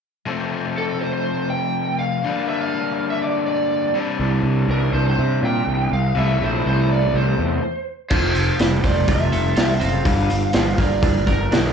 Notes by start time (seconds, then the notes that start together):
0.26 F2 C3 F3 A3 C4
0.78 A4
1.01 C5
1.13 C5
1.50 G5
1.99 F5
2.24 G2 D3 G3 A#3 D4
2.48 E5
2.61 F5
3.10 E5
3.22 D5
3.46 D5
3.94 C3 G3 C4 D4
4.20 C2
4.43 C2
4.69 C2 A#4
4.93 C2 C5
5.09 C5
5.19 C3
5.43 A#2 G5
5.67 C2
5.92 C2 F5
6.15 C2 C3 E3 A3 E4 E5
6.42 A#1 C5
6.66 C2 C5
6.92 D5
7.14 C2 C5
7.39 E2
8.10 F1 F2 C3 F3 C5, kick, crash
8.35 F2 C3, open hi-hat
8.59 F1 F2 C3 G3, snare, open hi-hat
8.84 F1 F2 C3 C4 D5, kick, open hi-hat
9.08 F1 F2 C3 F4 E5, kick, open hi-hat
9.32 F1 F2 C3 A4, open hi-hat
9.56 C2 F2 C3 F4, snare, open hi-hat
9.80 F#1 F2 C3 C4, open hi-hat
9.85 F5
10.05 G1 G2 D3 G3, kick, open hi-hat
10.30 G2 D3, open hi-hat
10.53 G1 G2 D3 F3, snare, open hi-hat
10.78 G1 G2 D3 A#3 D5, kick, open hi-hat
11.02 G1 G2 D3 D4, kick, open hi-hat
11.26 G1 G2 D3 A#4, kick, open hi-hat
11.51 B1 G2 D3 D4, snare, open hi-hat